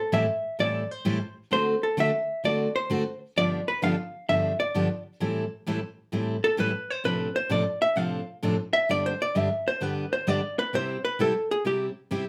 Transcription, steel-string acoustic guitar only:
0.12 0.25 A2 medium
0.12 0.25 E3 medium
0.12 0.25 G3 medium
0.12 0.25 C4 medium
0.12 0.25 E4 medium
0.12 0.25 A4 medium
0.59 0.82 A2 medium
0.59 0.82 E3 medium
0.59 0.82 G3 medium
0.59 0.82 C4 medium
0.59 0.82 E4 medium
0.59 0.83 A4 medium
1.05 1.17 A2 medium
1.05 1.17 E3 medium
1.05 1.17 G3 medium
1.05 1.18 C4 medium
1.05 1.18 E4 medium
1.05 1.18 A4 medium
1.51 1.74 D3 medium
1.51 1.74 A3 medium
1.51 1.75 C4 medium
1.51 1.74 F#4 medium
1.51 1.75 A4 medium
1.97 2.09 D3 medium
1.97 2.10 A3 medium
1.97 2.10 C4 medium
1.97 2.10 F#4 medium
1.97 2.10 A4 medium
2.44 2.67 D3 medium
2.44 2.67 A3 medium
2.44 2.67 C4 medium
2.44 2.67 F#4 medium
2.44 2.67 A4 medium
2.90 3.02 D3 medium
2.90 3.02 A3 medium
2.90 3.02 C4 medium
2.90 3.02 F#4 medium
2.90 3.03 A4 medium
3.37 3.59 G2 medium
3.37 3.59 D3 soft
3.37 3.59 F3 medium
3.37 3.60 B3 medium
3.37 3.60 D4 medium
3.37 3.60 G4 medium
3.82 3.94 G2 medium
3.82 3.94 D3 medium
3.82 3.94 F3 medium
3.82 3.95 B3 medium
3.82 3.95 D4 medium
3.82 3.95 G4 medium
4.29 4.51 G2 medium
4.29 4.51 D3 medium
4.29 4.52 F3 medium
4.29 4.52 B3 medium
4.29 4.52 D4 medium
4.29 4.52 G4 medium
4.74 4.86 G2 medium
4.74 4.87 D3 medium
4.74 4.87 F3 medium
4.74 4.87 B3 medium
4.74 4.87 D4 medium
4.74 4.87 G4 medium
5.20 5.43 A2 medium
5.20 5.43 E3 medium
5.20 5.44 G3 medium
5.20 5.44 C4 medium
5.20 5.44 E4 medium
5.20 5.44 A4 medium
5.67 5.79 A2 medium
5.67 5.79 E3 medium
5.67 5.79 G3 medium
5.67 5.79 C4 medium
5.67 5.79 E4 medium
5.67 5.79 A4 medium
6.12 6.35 A2 medium
6.12 6.35 E3 medium
6.12 6.35 G3 medium
6.12 6.36 C4 medium
6.12 6.36 E4 medium
6.12 6.36 A4 medium
6.57 6.70 A2 medium
6.57 6.70 E3 medium
6.57 6.70 G3 medium
6.57 6.71 C4 medium
6.57 6.71 E4 medium
6.57 6.71 A4 medium
7.04 7.27 A2 medium
7.04 7.27 C3 medium
7.04 7.28 F3 medium
7.04 7.28 C4 medium
7.04 7.28 D4 medium
7.04 7.28 A4 medium
7.49 7.62 A2 medium
7.49 7.62 C3 medium
7.49 7.63 F3 medium
7.49 7.63 C4 medium
7.49 7.63 D4 medium
7.49 7.63 A4 medium
7.96 8.19 A2 medium
7.96 8.19 C3 medium
7.96 8.20 F3 medium
7.96 8.20 C4 medium
7.96 8.20 D4 medium
7.96 8.20 A4 medium
8.43 8.55 A2 medium
8.43 8.55 C3 medium
8.43 8.55 F3 medium
8.43 8.55 C4 medium
8.43 8.55 D4 medium
8.43 8.55 A4 medium
8.89 9.12 G2 medium
8.89 9.12 D3 medium
8.89 9.12 G3 medium
8.89 9.12 B3 medium
8.89 9.12 D4 medium
8.89 9.13 G4 medium
9.35 9.47 G2 medium
9.35 9.47 D3 medium
9.35 9.47 G3 medium
9.35 9.48 B3 medium
9.35 9.48 D4 medium
9.35 9.48 G4 medium
9.81 10.04 G2 medium
9.81 10.04 D3 medium
9.81 10.04 G3 medium
9.81 10.04 B3 medium
9.81 10.04 D4 medium
9.81 10.05 G4 medium
10.27 10.39 G2 medium
10.27 10.39 D3 medium
10.27 10.40 G3 medium
10.27 10.40 B3 medium
10.27 10.40 D4 medium
10.27 10.40 G4 medium
10.73 10.96 C3 medium
10.73 10.97 G3 medium
10.73 10.97 C4 medium
10.73 10.97 E4 medium
10.73 10.97 G4 medium
11.19 11.32 C3 medium
11.19 11.32 G3 medium
11.19 11.32 C4 medium
11.19 11.32 E4 medium
11.19 11.32 G4 medium
11.65 11.88 C3 medium
11.65 11.88 G3 medium
11.65 11.89 C4 medium
11.65 11.89 E4 medium
11.65 11.89 G4 medium
12.11 12.24 C3 medium
12.11 12.24 G3 medium
12.11 12.24 C4 medium
12.11 12.24 E4 medium
12.11 12.24 G4 medium

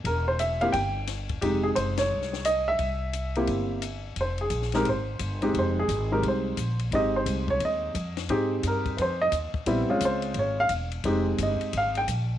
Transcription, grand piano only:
0.06 0.29 A#4 medium
0.28 0.39 C5 medium
0.40 0.62 E5 medium
0.61 0.73 A#3 medium
0.61 0.73 C4 soft
0.61 0.73 E4 medium
0.61 0.73 G4 medium
0.61 0.66 F5 medium
0.72 1.05 G5 medium
1.41 2.39 C3 medium
1.41 2.39 G#3 medium
1.41 2.39 D#4 medium
1.41 1.65 G4 medium
1.63 1.68 G#4 medium
1.75 1.99 C5 medium
1.99 2.47 C#5 medium
2.45 2.66 D#5 medium
2.68 4.01 E5 loud
3.37 3.81 A#3 medium
3.37 3.81 C4 medium
3.37 3.81 E4 medium
3.37 3.81 G4 medium
4.21 4.41 C5 medium
4.41 4.72 G#4 medium
4.74 4.85 G#3 medium
4.74 4.85 C4 medium
4.74 4.86 D#4 medium
4.74 4.86 G4 medium
4.74 4.86 A#4 medium
4.89 5.40 C5 medium
5.42 5.87 G#3 medium
5.42 5.87 C4 medium
5.42 5.87 D#4 medium
5.42 5.87 G4 medium
5.59 5.78 C5 medium
5.79 6.10 G#4 medium
6.12 6.56 G#3 medium
6.12 6.56 C4 medium
6.12 6.56 D#4 soft
6.12 6.56 G4 medium
6.12 6.24 A#4 medium
6.28 6.78 C5 medium
6.93 7.88 G#3 medium
6.93 7.88 C4 medium
6.93 7.88 D#4 medium
6.93 7.89 G4 medium
6.93 7.15 D#5 medium
7.16 7.47 C5 medium
7.50 7.61 C#5 medium
7.65 8.16 D#5 medium
8.30 9.26 C4 medium
8.30 9.26 D#4 medium
8.30 9.26 G4 medium
8.30 9.25 G#4 medium
8.67 8.98 A#4 medium
8.97 8.99 B4 medium
9.02 9.22 C5 medium
9.21 9.33 D#5 medium
9.67 9.87 G3 medium
9.67 9.87 B3 medium
9.67 9.87 C4 medium
9.67 9.87 E4 medium
9.90 10.63 G#3 medium
9.90 10.63 C4 medium
9.90 10.63 C#4 medium
9.90 10.63 F4 medium
10.05 10.36 C5 medium
10.39 10.59 C#5 medium
10.60 10.71 F5 loud
11.05 12.01 G#3 medium
11.05 12.01 C4 medium
11.05 12.01 D#4 medium
11.05 12.01 G4 medium
11.43 11.73 D#5 medium
11.77 11.97 F5 medium
11.97 12.04 G5 medium

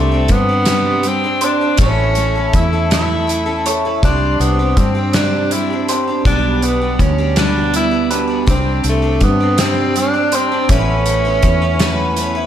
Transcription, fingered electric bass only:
0.00 0.27 C2 medium
0.30 1.75 G2 medium
1.79 2.50 A1 medium
2.54 3.99 E2 medium
4.03 4.37 C2 loud
4.40 4.74 C2 medium
4.77 6.22 G2 medium
6.25 6.96 B1 medium
6.99 8.44 D2 medium
8.47 8.81 C2 loud
8.84 9.18 C2 medium
9.21 10.66 G2 medium
10.69 11.40 A1 medium
11.43 12.46 E2 loud

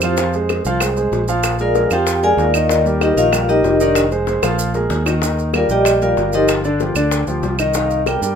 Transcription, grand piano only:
0.03 0.16 F3 medium
0.03 0.16 F4 medium
0.03 0.16 F5 medium
0.18 0.31 F3 medium
0.18 0.31 F4 medium
0.18 0.31 F5 medium
0.35 0.60 G#3 medium
0.35 0.60 G#4 medium
0.35 0.61 C5 medium
0.66 0.79 F3 medium
0.66 0.79 F4 medium
0.66 0.79 F5 medium
0.82 0.94 G#3 medium
0.82 0.94 G#4 medium
0.82 0.95 C5 medium
0.97 1.23 G#3 medium
0.97 1.23 G#4 medium
0.97 1.23 C5 medium
1.28 1.54 F3 medium
1.28 1.54 F4 medium
1.28 1.55 F5 medium
1.60 1.73 G#3 medium
1.60 1.73 G#4 medium
1.60 1.73 A#4 medium
1.76 1.89 G#3 medium
1.76 1.89 G#4 medium
1.76 1.89 A#4 medium
1.91 2.17 F3 medium
1.91 2.17 F4 medium
1.91 2.18 F5 medium
2.23 2.49 G#3 medium
2.23 2.49 G#4 medium
2.23 2.49 A#4 medium
2.54 2.67 D#3 medium
2.54 2.67 D#4 medium
2.54 2.68 D#5 medium
2.70 2.83 D#3 medium
2.70 2.83 D#4 medium
2.70 2.83 D#5 medium
2.86 3.12 G3 medium
2.86 3.12 G4 medium
2.86 3.12 A#4 medium
3.17 3.30 D#3 medium
3.17 3.30 D#4 medium
3.17 3.30 D#5 medium
3.32 3.46 G3 medium
3.32 3.46 G4 medium
3.32 3.46 A#4 medium
3.49 3.75 G3 medium
3.49 3.75 G4 medium
3.49 3.75 A#4 medium
3.81 4.06 D#3 medium
3.81 4.06 D#4 medium
3.81 4.06 D#5 medium
4.12 4.25 G#3 medium
4.12 4.25 G#4 medium
4.12 4.25 C5 medium
4.27 4.40 G#3 medium
4.27 4.41 G#4 medium
4.27 4.41 C5 medium
4.43 4.69 F3 medium
4.43 4.69 F4 medium
4.43 4.70 F5 medium
4.75 5.01 G#3 medium
4.75 5.01 G#4 medium
4.75 5.01 A#4 medium
5.06 5.19 D#3 medium
5.06 5.20 D#4 medium
5.06 5.20 D#5 medium
5.23 5.48 D#3 medium
5.23 5.48 D#4 medium
5.23 5.49 D#5 medium
5.54 5.67 G3 medium
5.54 5.67 G4 medium
5.54 5.67 A#4 medium
5.71 5.96 G3 medium
5.71 5.96 G4 medium
5.71 5.96 A#4 medium
6.02 6.27 G3 medium
6.02 6.28 G4 medium
6.02 6.28 A#4 medium
6.34 6.59 F3 medium
6.34 6.60 F4 medium
6.34 6.60 G4 medium
6.65 6.77 D3 medium
6.65 6.77 D4 medium
6.65 6.78 D5 medium
6.81 6.94 F3 medium
6.81 6.94 F4 medium
6.81 6.94 G4 medium
6.96 7.22 D3 medium
6.96 7.22 D4 medium
6.96 7.22 D5 medium
7.27 7.53 F3 medium
7.27 7.54 F4 medium
7.27 7.54 G4 medium
7.59 7.72 D#3 medium
7.59 7.72 D#4 medium
7.59 7.72 D#5 medium
7.75 8.01 D#3 medium
7.75 8.01 D#4 medium
7.75 8.01 D#5 medium
8.06 8.19 G3 medium
8.06 8.19 G4 medium
8.06 8.20 A#4 medium
8.22 8.35 G3 medium
8.22 8.35 G4 medium
8.22 8.35 A#4 medium

